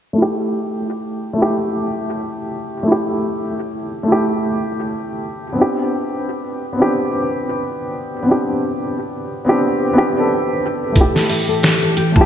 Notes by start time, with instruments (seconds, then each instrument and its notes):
0.13 upright piano A3
0.18 upright piano E4
0.22 upright piano G4
1.33 upright piano A3
1.38 upright piano E4
1.42 upright piano G4
2.83 upright piano A3
2.87 upright piano E4
2.92 upright piano G4
4.03 upright piano A3
4.08 upright piano E4
4.12 upright piano G4
5.53 upright piano B3 C4
5.58 upright piano D4 G4
6.73 upright piano B3 C4
6.79 upright piano D4 G4
8.22 upright piano B3 C4
8.28 upright piano D4 G4
9.45 upright piano B3 C4 D4
9.49 upright piano G4
9.93 upright piano B3 C4 D4
9.98 upright piano G4
10.10 upright piano B3 C4
10.16 upright piano D4 A4
10.92 ambient pad A2 E3 G4, upright piano A3, nylon-string guitar A4, kick, closed hi-hat
10.96 upright piano E4
11.01 upright piano G4
11.15 nylon-string guitar A4, snare
11.30 nylon-string guitar E5, open hi-hat
11.49 nylon-string guitar A4
11.63 nylon-string guitar G4, snare, closed hi-hat
11.82 nylon-string guitar A4, closed hi-hat
11.97 nylon-string guitar G4, closed hi-hat
12.12 upright piano A3, kick
12.16 upright piano E4, nylon-string guitar A5
12.21 upright piano G4